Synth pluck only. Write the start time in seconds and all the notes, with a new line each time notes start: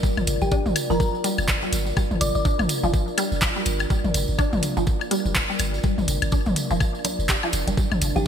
0.42 G4
0.52 G4
0.90 A#4
1.00 A#4
2.21 D5
2.35 D5
8.16 G4